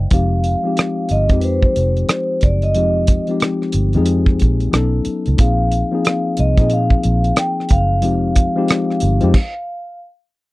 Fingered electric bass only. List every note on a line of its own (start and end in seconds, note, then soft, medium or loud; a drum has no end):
0.12 0.54 F1 medium
1.11 1.27 G1 medium
1.30 1.66 F2 medium
1.77 2.03 F1 medium
2.44 2.76 F#1 medium
2.76 3.18 F1 medium
3.74 3.96 G1 medium
3.95 4.44 F2 medium
4.42 4.68 A#1 medium
4.73 4.99 B1 medium
5.06 muted fingered electric bass stroke soft
5.28 5.37 C#2 medium
5.39 5.82 A#1 medium
6.39 6.55 C2 medium
6.58 6.94 A#2 medium
7.05 7.31 A#1 medium
7.71 8.04 F#1 medium
8.04 8.46 F1 medium
9.03 9.19 G1 medium
9.23 9.33 F2 medium